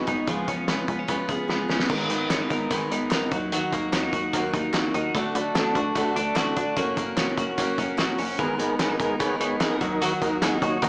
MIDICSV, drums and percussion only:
0, 0, Header, 1, 2, 480
1, 0, Start_track
1, 0, Tempo, 405680
1, 325, Time_signature, 4, 2, 24, 8
1, 12884, End_track
2, 0, Start_track
2, 0, Title_t, "Drums"
2, 83, Note_on_c, 9, 42, 61
2, 90, Note_on_c, 9, 36, 79
2, 201, Note_off_c, 9, 42, 0
2, 208, Note_off_c, 9, 36, 0
2, 325, Note_on_c, 9, 42, 83
2, 326, Note_on_c, 9, 36, 109
2, 443, Note_off_c, 9, 42, 0
2, 444, Note_off_c, 9, 36, 0
2, 567, Note_on_c, 9, 36, 82
2, 568, Note_on_c, 9, 42, 63
2, 685, Note_off_c, 9, 36, 0
2, 686, Note_off_c, 9, 42, 0
2, 804, Note_on_c, 9, 38, 98
2, 806, Note_on_c, 9, 42, 89
2, 922, Note_off_c, 9, 38, 0
2, 925, Note_off_c, 9, 42, 0
2, 1044, Note_on_c, 9, 36, 86
2, 1044, Note_on_c, 9, 42, 64
2, 1162, Note_off_c, 9, 36, 0
2, 1162, Note_off_c, 9, 42, 0
2, 1282, Note_on_c, 9, 42, 85
2, 1285, Note_on_c, 9, 36, 88
2, 1400, Note_off_c, 9, 42, 0
2, 1404, Note_off_c, 9, 36, 0
2, 1524, Note_on_c, 9, 36, 84
2, 1524, Note_on_c, 9, 42, 67
2, 1642, Note_off_c, 9, 36, 0
2, 1642, Note_off_c, 9, 42, 0
2, 1768, Note_on_c, 9, 38, 51
2, 1886, Note_off_c, 9, 38, 0
2, 2005, Note_on_c, 9, 38, 81
2, 2123, Note_off_c, 9, 38, 0
2, 2124, Note_on_c, 9, 38, 83
2, 2243, Note_off_c, 9, 38, 0
2, 2246, Note_on_c, 9, 36, 111
2, 2246, Note_on_c, 9, 49, 88
2, 2364, Note_off_c, 9, 36, 0
2, 2364, Note_off_c, 9, 49, 0
2, 2482, Note_on_c, 9, 42, 65
2, 2601, Note_off_c, 9, 42, 0
2, 2723, Note_on_c, 9, 38, 98
2, 2725, Note_on_c, 9, 42, 89
2, 2728, Note_on_c, 9, 39, 90
2, 2841, Note_off_c, 9, 38, 0
2, 2844, Note_off_c, 9, 42, 0
2, 2846, Note_off_c, 9, 39, 0
2, 2963, Note_on_c, 9, 36, 87
2, 2966, Note_on_c, 9, 42, 65
2, 3081, Note_off_c, 9, 36, 0
2, 3085, Note_off_c, 9, 42, 0
2, 3204, Note_on_c, 9, 42, 84
2, 3205, Note_on_c, 9, 36, 84
2, 3208, Note_on_c, 9, 39, 75
2, 3322, Note_off_c, 9, 42, 0
2, 3323, Note_off_c, 9, 36, 0
2, 3326, Note_off_c, 9, 39, 0
2, 3450, Note_on_c, 9, 42, 69
2, 3569, Note_off_c, 9, 42, 0
2, 3675, Note_on_c, 9, 39, 88
2, 3688, Note_on_c, 9, 38, 109
2, 3690, Note_on_c, 9, 42, 77
2, 3793, Note_off_c, 9, 39, 0
2, 3806, Note_off_c, 9, 38, 0
2, 3808, Note_off_c, 9, 42, 0
2, 3922, Note_on_c, 9, 42, 57
2, 3925, Note_on_c, 9, 36, 94
2, 4041, Note_off_c, 9, 42, 0
2, 4044, Note_off_c, 9, 36, 0
2, 4169, Note_on_c, 9, 42, 79
2, 4287, Note_off_c, 9, 42, 0
2, 4407, Note_on_c, 9, 36, 85
2, 4410, Note_on_c, 9, 42, 66
2, 4526, Note_off_c, 9, 36, 0
2, 4528, Note_off_c, 9, 42, 0
2, 4649, Note_on_c, 9, 38, 106
2, 4650, Note_on_c, 9, 39, 92
2, 4651, Note_on_c, 9, 42, 92
2, 4767, Note_off_c, 9, 38, 0
2, 4768, Note_off_c, 9, 39, 0
2, 4769, Note_off_c, 9, 42, 0
2, 4885, Note_on_c, 9, 36, 93
2, 4888, Note_on_c, 9, 42, 64
2, 5004, Note_off_c, 9, 36, 0
2, 5007, Note_off_c, 9, 42, 0
2, 5128, Note_on_c, 9, 36, 90
2, 5130, Note_on_c, 9, 42, 88
2, 5134, Note_on_c, 9, 39, 79
2, 5246, Note_off_c, 9, 36, 0
2, 5249, Note_off_c, 9, 42, 0
2, 5252, Note_off_c, 9, 39, 0
2, 5367, Note_on_c, 9, 36, 84
2, 5369, Note_on_c, 9, 42, 70
2, 5485, Note_off_c, 9, 36, 0
2, 5487, Note_off_c, 9, 42, 0
2, 5600, Note_on_c, 9, 39, 83
2, 5608, Note_on_c, 9, 38, 111
2, 5610, Note_on_c, 9, 42, 78
2, 5718, Note_off_c, 9, 39, 0
2, 5726, Note_off_c, 9, 38, 0
2, 5729, Note_off_c, 9, 42, 0
2, 5849, Note_on_c, 9, 42, 61
2, 5967, Note_off_c, 9, 42, 0
2, 6089, Note_on_c, 9, 36, 109
2, 6093, Note_on_c, 9, 42, 81
2, 6208, Note_off_c, 9, 36, 0
2, 6211, Note_off_c, 9, 42, 0
2, 6332, Note_on_c, 9, 42, 67
2, 6450, Note_off_c, 9, 42, 0
2, 6572, Note_on_c, 9, 38, 107
2, 6573, Note_on_c, 9, 39, 89
2, 6574, Note_on_c, 9, 42, 94
2, 6690, Note_off_c, 9, 38, 0
2, 6691, Note_off_c, 9, 39, 0
2, 6693, Note_off_c, 9, 42, 0
2, 6807, Note_on_c, 9, 36, 93
2, 6809, Note_on_c, 9, 42, 65
2, 6925, Note_off_c, 9, 36, 0
2, 6927, Note_off_c, 9, 42, 0
2, 7048, Note_on_c, 9, 36, 87
2, 7048, Note_on_c, 9, 42, 86
2, 7050, Note_on_c, 9, 39, 77
2, 7166, Note_off_c, 9, 36, 0
2, 7167, Note_off_c, 9, 42, 0
2, 7169, Note_off_c, 9, 39, 0
2, 7293, Note_on_c, 9, 42, 69
2, 7411, Note_off_c, 9, 42, 0
2, 7520, Note_on_c, 9, 39, 85
2, 7529, Note_on_c, 9, 38, 108
2, 7531, Note_on_c, 9, 42, 81
2, 7638, Note_off_c, 9, 39, 0
2, 7647, Note_off_c, 9, 38, 0
2, 7649, Note_off_c, 9, 42, 0
2, 7768, Note_on_c, 9, 42, 59
2, 7771, Note_on_c, 9, 36, 80
2, 7886, Note_off_c, 9, 42, 0
2, 7890, Note_off_c, 9, 36, 0
2, 8005, Note_on_c, 9, 42, 81
2, 8007, Note_on_c, 9, 36, 109
2, 8124, Note_off_c, 9, 42, 0
2, 8125, Note_off_c, 9, 36, 0
2, 8247, Note_on_c, 9, 42, 63
2, 8248, Note_on_c, 9, 36, 83
2, 8365, Note_off_c, 9, 42, 0
2, 8366, Note_off_c, 9, 36, 0
2, 8487, Note_on_c, 9, 38, 101
2, 8487, Note_on_c, 9, 39, 91
2, 8490, Note_on_c, 9, 42, 89
2, 8605, Note_off_c, 9, 38, 0
2, 8605, Note_off_c, 9, 39, 0
2, 8608, Note_off_c, 9, 42, 0
2, 8726, Note_on_c, 9, 36, 91
2, 8730, Note_on_c, 9, 42, 64
2, 8845, Note_off_c, 9, 36, 0
2, 8848, Note_off_c, 9, 42, 0
2, 8968, Note_on_c, 9, 36, 88
2, 8969, Note_on_c, 9, 42, 88
2, 8973, Note_on_c, 9, 39, 77
2, 9087, Note_off_c, 9, 36, 0
2, 9087, Note_off_c, 9, 42, 0
2, 9092, Note_off_c, 9, 39, 0
2, 9207, Note_on_c, 9, 36, 83
2, 9209, Note_on_c, 9, 42, 70
2, 9325, Note_off_c, 9, 36, 0
2, 9327, Note_off_c, 9, 42, 0
2, 9440, Note_on_c, 9, 39, 82
2, 9450, Note_on_c, 9, 38, 108
2, 9452, Note_on_c, 9, 42, 80
2, 9559, Note_off_c, 9, 39, 0
2, 9568, Note_off_c, 9, 38, 0
2, 9571, Note_off_c, 9, 42, 0
2, 9684, Note_on_c, 9, 46, 60
2, 9802, Note_off_c, 9, 46, 0
2, 9927, Note_on_c, 9, 36, 110
2, 9928, Note_on_c, 9, 42, 79
2, 10046, Note_off_c, 9, 36, 0
2, 10046, Note_off_c, 9, 42, 0
2, 10170, Note_on_c, 9, 42, 62
2, 10288, Note_off_c, 9, 42, 0
2, 10405, Note_on_c, 9, 38, 107
2, 10407, Note_on_c, 9, 42, 94
2, 10410, Note_on_c, 9, 39, 91
2, 10523, Note_off_c, 9, 38, 0
2, 10525, Note_off_c, 9, 42, 0
2, 10528, Note_off_c, 9, 39, 0
2, 10645, Note_on_c, 9, 36, 94
2, 10645, Note_on_c, 9, 42, 68
2, 10763, Note_off_c, 9, 36, 0
2, 10763, Note_off_c, 9, 42, 0
2, 10887, Note_on_c, 9, 42, 89
2, 10888, Note_on_c, 9, 36, 86
2, 10896, Note_on_c, 9, 39, 79
2, 11005, Note_off_c, 9, 42, 0
2, 11006, Note_off_c, 9, 36, 0
2, 11014, Note_off_c, 9, 39, 0
2, 11131, Note_on_c, 9, 42, 75
2, 11249, Note_off_c, 9, 42, 0
2, 11365, Note_on_c, 9, 38, 108
2, 11367, Note_on_c, 9, 39, 85
2, 11368, Note_on_c, 9, 42, 78
2, 11484, Note_off_c, 9, 38, 0
2, 11485, Note_off_c, 9, 39, 0
2, 11486, Note_off_c, 9, 42, 0
2, 11606, Note_on_c, 9, 42, 59
2, 11608, Note_on_c, 9, 36, 96
2, 11724, Note_off_c, 9, 42, 0
2, 11727, Note_off_c, 9, 36, 0
2, 11852, Note_on_c, 9, 42, 82
2, 11970, Note_off_c, 9, 42, 0
2, 12089, Note_on_c, 9, 36, 83
2, 12091, Note_on_c, 9, 42, 67
2, 12207, Note_off_c, 9, 36, 0
2, 12210, Note_off_c, 9, 42, 0
2, 12327, Note_on_c, 9, 38, 103
2, 12329, Note_on_c, 9, 42, 97
2, 12335, Note_on_c, 9, 39, 93
2, 12445, Note_off_c, 9, 38, 0
2, 12448, Note_off_c, 9, 42, 0
2, 12454, Note_off_c, 9, 39, 0
2, 12565, Note_on_c, 9, 36, 94
2, 12566, Note_on_c, 9, 42, 64
2, 12683, Note_off_c, 9, 36, 0
2, 12685, Note_off_c, 9, 42, 0
2, 12804, Note_on_c, 9, 42, 85
2, 12806, Note_on_c, 9, 36, 88
2, 12815, Note_on_c, 9, 39, 80
2, 12884, Note_off_c, 9, 36, 0
2, 12884, Note_off_c, 9, 39, 0
2, 12884, Note_off_c, 9, 42, 0
2, 12884, End_track
0, 0, End_of_file